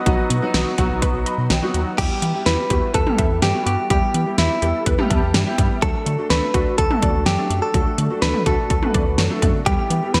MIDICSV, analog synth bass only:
0, 0, Header, 1, 2, 480
1, 0, Start_track
1, 0, Tempo, 480000
1, 62, Time_signature, 4, 2, 24, 8
1, 10200, End_track
2, 0, Start_track
2, 0, Title_t, "Analog synth bass"
2, 0, Program_c, 0, 38
2, 62, Note_on_c, 0, 35, 98
2, 169, Note_off_c, 0, 35, 0
2, 302, Note_on_c, 0, 47, 91
2, 409, Note_off_c, 0, 47, 0
2, 541, Note_on_c, 0, 35, 97
2, 649, Note_off_c, 0, 35, 0
2, 781, Note_on_c, 0, 35, 106
2, 889, Note_off_c, 0, 35, 0
2, 901, Note_on_c, 0, 35, 103
2, 1008, Note_off_c, 0, 35, 0
2, 1141, Note_on_c, 0, 35, 102
2, 1248, Note_off_c, 0, 35, 0
2, 1381, Note_on_c, 0, 47, 92
2, 1489, Note_off_c, 0, 47, 0
2, 1502, Note_on_c, 0, 35, 108
2, 1609, Note_off_c, 0, 35, 0
2, 1741, Note_on_c, 0, 39, 84
2, 1849, Note_off_c, 0, 39, 0
2, 1983, Note_on_c, 0, 40, 99
2, 2089, Note_off_c, 0, 40, 0
2, 2221, Note_on_c, 0, 52, 94
2, 2328, Note_off_c, 0, 52, 0
2, 2461, Note_on_c, 0, 40, 107
2, 2568, Note_off_c, 0, 40, 0
2, 2703, Note_on_c, 0, 40, 103
2, 2810, Note_off_c, 0, 40, 0
2, 2943, Note_on_c, 0, 40, 103
2, 3050, Note_off_c, 0, 40, 0
2, 3186, Note_on_c, 0, 40, 100
2, 3291, Note_off_c, 0, 40, 0
2, 3303, Note_on_c, 0, 40, 89
2, 3409, Note_off_c, 0, 40, 0
2, 3422, Note_on_c, 0, 43, 102
2, 3529, Note_off_c, 0, 43, 0
2, 3662, Note_on_c, 0, 43, 92
2, 3769, Note_off_c, 0, 43, 0
2, 3903, Note_on_c, 0, 40, 105
2, 4010, Note_off_c, 0, 40, 0
2, 4143, Note_on_c, 0, 52, 84
2, 4249, Note_off_c, 0, 52, 0
2, 4383, Note_on_c, 0, 40, 100
2, 4489, Note_off_c, 0, 40, 0
2, 4622, Note_on_c, 0, 40, 97
2, 4729, Note_off_c, 0, 40, 0
2, 4863, Note_on_c, 0, 40, 102
2, 4970, Note_off_c, 0, 40, 0
2, 5106, Note_on_c, 0, 40, 89
2, 5211, Note_off_c, 0, 40, 0
2, 5221, Note_on_c, 0, 40, 96
2, 5328, Note_off_c, 0, 40, 0
2, 5341, Note_on_c, 0, 43, 96
2, 5448, Note_off_c, 0, 43, 0
2, 5583, Note_on_c, 0, 43, 94
2, 5689, Note_off_c, 0, 43, 0
2, 5823, Note_on_c, 0, 38, 106
2, 5930, Note_off_c, 0, 38, 0
2, 6062, Note_on_c, 0, 50, 97
2, 6169, Note_off_c, 0, 50, 0
2, 6300, Note_on_c, 0, 38, 99
2, 6408, Note_off_c, 0, 38, 0
2, 6542, Note_on_c, 0, 38, 97
2, 6649, Note_off_c, 0, 38, 0
2, 6782, Note_on_c, 0, 38, 101
2, 6889, Note_off_c, 0, 38, 0
2, 7026, Note_on_c, 0, 38, 94
2, 7131, Note_off_c, 0, 38, 0
2, 7143, Note_on_c, 0, 38, 99
2, 7250, Note_off_c, 0, 38, 0
2, 7263, Note_on_c, 0, 42, 106
2, 7369, Note_off_c, 0, 42, 0
2, 7502, Note_on_c, 0, 42, 92
2, 7609, Note_off_c, 0, 42, 0
2, 7742, Note_on_c, 0, 38, 106
2, 7849, Note_off_c, 0, 38, 0
2, 7982, Note_on_c, 0, 50, 92
2, 8089, Note_off_c, 0, 50, 0
2, 8222, Note_on_c, 0, 38, 100
2, 8329, Note_off_c, 0, 38, 0
2, 8462, Note_on_c, 0, 38, 92
2, 8569, Note_off_c, 0, 38, 0
2, 8703, Note_on_c, 0, 38, 104
2, 8810, Note_off_c, 0, 38, 0
2, 8945, Note_on_c, 0, 38, 99
2, 9050, Note_off_c, 0, 38, 0
2, 9062, Note_on_c, 0, 38, 98
2, 9169, Note_off_c, 0, 38, 0
2, 9183, Note_on_c, 0, 42, 97
2, 9289, Note_off_c, 0, 42, 0
2, 9423, Note_on_c, 0, 42, 90
2, 9529, Note_off_c, 0, 42, 0
2, 9663, Note_on_c, 0, 40, 101
2, 9769, Note_off_c, 0, 40, 0
2, 9902, Note_on_c, 0, 52, 95
2, 10009, Note_off_c, 0, 52, 0
2, 10143, Note_on_c, 0, 40, 104
2, 10200, Note_off_c, 0, 40, 0
2, 10200, End_track
0, 0, End_of_file